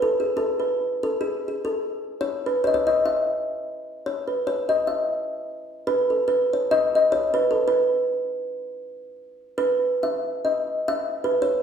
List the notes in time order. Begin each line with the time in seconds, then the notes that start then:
0.02 A4
0.20 G#4
0.37 A4
0.60 B4
1.03 A4
1.21 G#4
1.48 G#4
1.65 A4
2.21 C#5
2.46 B4
2.64 C#5 D#5
2.74 C#5
2.87 D#5
3.06 E5
4.06 C#5
4.28 B4
4.47 C#5
4.69 D#5
4.87 E5
5.87 B4
6.10 A4
6.28 B4
6.53 C#5
6.71 D#5
6.95 D#5
7.12 C#5
7.34 B4
7.51 A4
7.68 B4
9.58 B4
10.03 E5
10.45 D#5
10.88 E5
11.24 B4
11.42 C#5